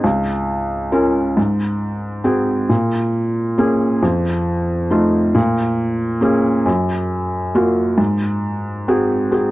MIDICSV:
0, 0, Header, 1, 2, 480
1, 0, Start_track
1, 0, Tempo, 883652
1, 24, Time_signature, 6, 3, 24, 8
1, 5167, End_track
2, 0, Start_track
2, 0, Title_t, "Felt piano"
2, 0, Program_c, 0, 0
2, 0, Control_c, 0, 64, 127
2, 21, Note_on_c, 0, 37, 58
2, 32, Control_c, 0, 64, 0
2, 115, Control_c, 0, 64, 127
2, 499, Note_on_c, 0, 61, 41
2, 501, Note_on_c, 0, 65, 41
2, 502, Note_on_c, 0, 70, 47
2, 724, Note_off_c, 0, 37, 0
2, 736, Note_off_c, 0, 61, 0
2, 737, Note_off_c, 0, 65, 0
2, 738, Note_off_c, 0, 70, 0
2, 744, Note_on_c, 0, 44, 55
2, 753, Control_c, 0, 64, 0
2, 856, Control_c, 0, 64, 127
2, 1218, Note_on_c, 0, 60, 42
2, 1222, Note_on_c, 0, 66, 37
2, 1222, Note_on_c, 0, 68, 46
2, 1444, Note_off_c, 0, 44, 0
2, 1455, Note_off_c, 0, 60, 0
2, 1457, Note_off_c, 0, 66, 0
2, 1458, Note_off_c, 0, 68, 0
2, 1464, Note_on_c, 0, 46, 56
2, 1474, Control_c, 0, 64, 0
2, 1569, Control_c, 0, 64, 127
2, 1944, Note_on_c, 0, 61, 39
2, 1945, Note_on_c, 0, 58, 44
2, 1949, Note_on_c, 0, 68, 54
2, 2164, Note_off_c, 0, 46, 0
2, 2179, Note_off_c, 0, 61, 0
2, 2180, Note_off_c, 0, 58, 0
2, 2181, Note_off_c, 0, 68, 0
2, 2187, Note_on_c, 0, 41, 53
2, 2196, Control_c, 0, 64, 0
2, 2299, Control_c, 0, 64, 127
2, 2663, Note_on_c, 0, 57, 42
2, 2666, Note_on_c, 0, 63, 39
2, 2668, Note_on_c, 0, 65, 46
2, 2885, Note_off_c, 0, 41, 0
2, 2897, Note_off_c, 0, 57, 0
2, 2899, Note_off_c, 0, 63, 0
2, 2900, Note_off_c, 0, 65, 0
2, 2904, Note_on_c, 0, 46, 61
2, 2915, Control_c, 0, 64, 0
2, 3014, Control_c, 0, 64, 127
2, 3373, Note_on_c, 0, 58, 46
2, 3377, Note_on_c, 0, 61, 42
2, 3380, Note_on_c, 0, 68, 54
2, 3600, Note_off_c, 0, 46, 0
2, 3610, Note_off_c, 0, 58, 0
2, 3613, Note_off_c, 0, 61, 0
2, 3614, Note_off_c, 0, 68, 0
2, 3616, Note_on_c, 0, 42, 55
2, 3630, Control_c, 0, 64, 0
2, 3731, Control_c, 0, 64, 127
2, 4100, Note_on_c, 0, 58, 47
2, 4101, Note_on_c, 0, 65, 41
2, 4103, Note_on_c, 0, 66, 47
2, 4317, Note_off_c, 0, 42, 0
2, 4333, Note_on_c, 0, 44, 59
2, 4334, Note_off_c, 0, 58, 0
2, 4334, Note_off_c, 0, 65, 0
2, 4335, Note_off_c, 0, 66, 0
2, 4350, Control_c, 0, 64, 0
2, 4429, Control_c, 0, 64, 127
2, 4824, Note_on_c, 0, 60, 45
2, 4825, Note_on_c, 0, 66, 44
2, 4826, Note_on_c, 0, 68, 52
2, 5052, Note_off_c, 0, 60, 0
2, 5055, Note_off_c, 0, 68, 0
2, 5056, Note_off_c, 0, 66, 0
2, 5060, Note_on_c, 0, 60, 37
2, 5063, Note_on_c, 0, 68, 43
2, 5064, Note_on_c, 0, 66, 39
2, 5167, Note_off_c, 0, 44, 0
2, 5167, Note_off_c, 0, 60, 0
2, 5167, Note_off_c, 0, 66, 0
2, 5167, Note_off_c, 0, 68, 0
2, 5167, End_track
0, 0, End_of_file